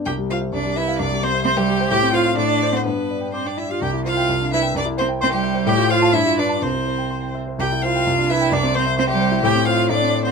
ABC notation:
X:1
M:2/4
L:1/16
Q:1/4=129
K:C
V:1 name="Violin"
g2 f2 d2 e2 | d2 c2 c G3 | g2 f2 d3 c | B4 c d e f |
g2 f4 e2 | d2 c2 c G3 | g2 f2 e2 d2 | c6 z2 |
g2 f4 e2 | d2 c2 c G3 | g2 f2 d3 c |]
V:2 name="Grand piano"
C,, G, c e C,, G, B f | C,, G, c e c' e G c | A,, C c f A,, D c ^f | G,, D d g d' g d G |
C,, E c g C,, D B g | C,, E c g c' g e c | A,, F c a G,, F B a | C,, E c g c' g e c |
C,, E c g C,, D B g | C,, C c e c' e c E | A,, C c f A,, C d ^f |]
V:3 name="Cello"
G2 F2 D2 E2 | D2 C2 C G,3 | G2 F2 D3 C | B,4 C D E F |
G2 F4 E2 | D2 C2 C G,3 | G2 F2 E2 D2 | C6 z2 |
G2 F4 E2 | D2 C2 C G,3 | G2 F2 D3 C |]